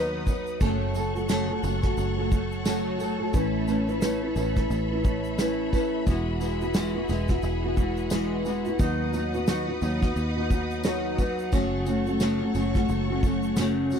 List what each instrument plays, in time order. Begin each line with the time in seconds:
Already playing: fingered electric bass D#2, nylon-string guitar D#3 F#3 B3 D#4 B4, string section B4 D#5 F#5 D#6
0.27 nylon-string guitar F#3 B3 D#4 B4, kick, tambourine, shaker
0.47 shaker
0.60 fingered electric bass F#1, nylon-string guitar F#2 C#3 F#3 A3 F#4 A4, string section A4 C#5 F#5 C#6, kick, tambourine, shaker
0.94 nylon-string guitar F#3 A3 F#4 A4, tambourine, shaker
1.15 nylon-string guitar F#3 A3 F#4 A4, shaker
1.28 nylon-string guitar F#2 C#3 F#3 A3 F#4 A4, snare, tambourine, shaker
1.49 nylon-string guitar F#3 A3 F#4 A4
1.62 fingered electric bass F#1, nylon-string guitar F#3 A3 F#4 A4, tambourine, shaker
1.83 nylon-string guitar F#3 A3 F#4 A4, kick, snare, shaker
1.97 fingered electric bass F#1, tambourine, shaker
2.17 nylon-string guitar F#3 A3 F#4 A4
2.31 nylon-string guitar F#3 A3 F#4 A4, kick, tambourine, shaker
2.52 shaker
2.65 nylon-string guitar F#2 C#3 F#3 A3 F#4 A4, snare, tambourine, shaker
2.99 nylon-string guitar F#3 A3 F#4 A4, tambourine, shaker
3.20 nylon-string guitar F#3 A3 F#4 A4
3.33 fingered electric bass A1, nylon-string guitar A3 C#4 E4 B4, string section E5 B5, kick, tambourine, shaker
3.67 nylon-string guitar A3 C#4 E4 B4, tambourine, shaker
3.88 nylon-string guitar C#4 E4 B4, shaker
4.01 nylon-string guitar A3 C#4 E4 B4, snare, tambourine, shaker
4.22 nylon-string guitar C#4 E4 B4
4.36 fingered electric bass A1, nylon-string guitar A3 C#4 E4 B4, tambourine, shaker
4.56 nylon-string guitar C#4 E4 B4, kick, snare, shaker
4.70 fingered electric bass A1, tambourine, shaker
4.91 nylon-string guitar C#4 E4 B4
5.04 nylon-string guitar A3 C#4 E4 B4, kick, shaker
5.24 shaker
5.38 nylon-string guitar A3 C#4 E4 B4, snare, tambourine, shaker
5.72 nylon-string guitar A3 C#4 E4 B4, kick, tambourine, shaker
6.07 fingered electric bass E1, nylon-string guitar E3 G#3 B3 E4 F#4, string section G#4 F#5, kick, tambourine, shaker
6.40 nylon-string guitar G#3 B3 E4 F#4, tambourine, shaker
6.61 nylon-string guitar B3 E4 F#4, shaker
6.74 nylon-string guitar E3 G#3 B3 E4 F#4, snare, tambourine, shaker
6.95 nylon-string guitar B3 E4 F#4
7.08 fingered electric bass E1, nylon-string guitar G#3 B3 E4 F#4, tambourine, shaker
7.28 nylon-string guitar B3 E4 F#4, kick, snare, shaker
7.42 fingered electric bass E1, tambourine, shaker
7.64 nylon-string guitar B3 E4 F#4
7.76 nylon-string guitar G#3 B3 E4 F#4, kick, shaker
7.97 shaker
8.10 nylon-string guitar E3 G#3 B3 E4 F#4, snare, tambourine, shaker
8.45 nylon-string guitar G#3 B3 E4 F#4, tambourine, shaker
8.65 nylon-string guitar B3 E4 F#4, shaker
8.79 fingered electric bass D#2, nylon-string guitar D#3 F#3 B3 D#4 F#4, string section B4 D#5 D#6, kick, tambourine, shaker
9.13 nylon-string guitar F#3 B3 D#4 F#4, tambourine, shaker
9.34 nylon-string guitar B3 D#4 F#4, shaker
9.47 nylon-string guitar D#3 F#3 B3 D#4 F#4, snare, tambourine, shaker
9.68 nylon-string guitar B3 D#4 F#4
9.82 fingered electric bass D#2, nylon-string guitar F#3 B3 D#4 F#4, tambourine, shaker
10.02 nylon-string guitar B3 D#4 F#4, kick, snare, shaker
10.16 fingered electric bass D#2, tambourine, shaker
10.36 nylon-string guitar B3 D#4 F#4
10.50 nylon-string guitar F#3 B3 D#4 F#4, kick, tambourine, shaker
10.71 shaker
10.84 nylon-string guitar D#3 F#3 B3 D#4 F#4, snare, tambourine, shaker
11.18 nylon-string guitar F#3 B3 D#4 F#4, kick, tambourine, shaker
11.39 shaker
11.51 fingered electric bass F#1, nylon-string guitar F#2 C#3 F#3 A3 C#4 F#4, string section A4 C#5 C#6, kick, tambourine, shaker
11.86 nylon-string guitar F#3 A3 C#4 F#4, tambourine, shaker
12.06 nylon-string guitar F#3 A3 C#4 F#4, shaker
12.20 nylon-string guitar F#2 C#3 F#3 A3 C#4 F#4, snare, tambourine, shaker
12.41 nylon-string guitar F#3 A3 C#4 F#4
12.54 fingered electric bass F#1, nylon-string guitar F#3 A3 C#4 F#4, tambourine, shaker
12.74 nylon-string guitar F#3 A3 C#4 F#4, kick, snare, shaker
12.89 fingered electric bass F#1, tambourine, shaker
13.10 nylon-string guitar F#3 A3 C#4 F#4
13.23 nylon-string guitar F#3 A3 C#4 F#4, kick, tambourine, shaker
13.43 shaker
13.56 nylon-string guitar F#2 C#3 F#3 A3 C#4 F#4, snare, tambourine, shaker
13.90 nylon-string guitar F#3 A3 C#4 F#4, tambourine, shaker